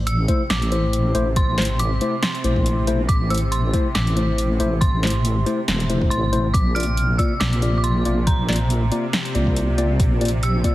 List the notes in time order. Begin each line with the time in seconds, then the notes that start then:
Already playing: A1 C3
0.07 E6, closed hi-hat
0.28 A3 E4 C5, kick, closed hi-hat
0.50 A1 D6, snare, closed hi-hat
0.62 closed hi-hat
0.72 A3 E4 C5, closed hi-hat
0.93 closed hi-hat
1.15 A1 A3 E4 C5, closed hi-hat
1.36 C6, kick, closed hi-hat
1.58 A3 E4 C5, snare, closed hi-hat
1.62 closed hi-hat
1.65 closed hi-hat
1.79 D6, closed hi-hat
2.01 A3 E4 C5, closed hi-hat
2.23 C6, snare, closed hi-hat
2.35 closed hi-hat
2.44 A#1 A3 E4 C5, closed hi-hat
2.56 kick
2.66 closed hi-hat
2.87 A3 E4 C5, closed hi-hat
3.09 A1 D6, kick, closed hi-hat
3.30 A3 E4 C5 E6, closed hi-hat
3.35 closed hi-hat
3.38 closed hi-hat
3.52 C6, closed hi-hat
3.73 A3 E4 C5, kick, closed hi-hat
3.95 A1 D6, snare, closed hi-hat
4.07 closed hi-hat
4.16 A3 E4 C5, closed hi-hat
4.38 closed hi-hat
4.60 A1 A3 E4 C5, closed hi-hat
4.81 C6, kick, closed hi-hat
5.03 A3 E4 C5, snare, closed hi-hat
5.07 closed hi-hat
5.10 closed hi-hat
5.25 closed hi-hat
5.46 A3 E4 C5, closed hi-hat
5.68 E1, snare, closed hi-hat
5.80 closed hi-hat
5.89 A3 E4 C5, closed hi-hat
6.01 kick
6.10 A1 C6, closed hi-hat
6.33 A3 E4 C5, closed hi-hat
6.54 A#1 D6, kick, closed hi-hat
6.75 A#3 F4 D5 F6, closed hi-hat
6.80 closed hi-hat
6.83 closed hi-hat
6.97 closed hi-hat
7.18 A#3 F4 D5 E6, kick, closed hi-hat
7.40 A#1 D6, snare, closed hi-hat
7.53 closed hi-hat
7.62 A#3 F4 D5, closed hi-hat
7.78 D6
7.84 C6, closed hi-hat
8.05 A#1 A#3 F4 D5, closed hi-hat
8.27 A#5, kick, closed hi-hat
8.49 A#3 F4 D5, snare, closed hi-hat
8.53 closed hi-hat
8.56 closed hi-hat
8.70 closed hi-hat
8.92 A#3 F4 D5, closed hi-hat
9.13 snare, closed hi-hat
9.25 closed hi-hat
9.35 C2 A#3 F4 D5, closed hi-hat
9.47 kick
9.56 closed hi-hat
9.78 A#3 F4 D5, closed hi-hat
9.99 A#1, kick, closed hi-hat
10.21 A#3 F4 D5, closed hi-hat
10.25 closed hi-hat
10.28 closed hi-hat
10.43 E6, closed hi-hat
10.64 A#3 F4 D5, kick, closed hi-hat